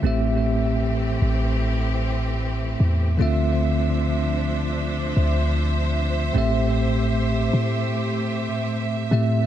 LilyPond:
<<
  \new Staff \with { instrumentName = "String section" } { \time 4/4 \key a \phrygian \tempo 4 = 76 << { g'1 | c''1~ | c''1 | } \\ { <e a c'>1 | <f d' e''>1 | <a g'>1 | } >> }
  \new Staff \with { instrumentName = "Tine electric piano" } { \time 4/4 \key a \phrygian <a, a c' g' e''>1 | <d a c' f' e''>1 | <a, a c' g' e''>2.~ <a, a c' g' e''>8 <a, a c' g' e''>8 | }
  \new Staff \with { instrumentName = "808-style bass" } { \clef bass \time 4/4 \key a \phrygian a,,4. a,,2 e,8 | d,2~ d,8 d,4. | a,,4. a,4~ a,16 r8. a,8 | }
>>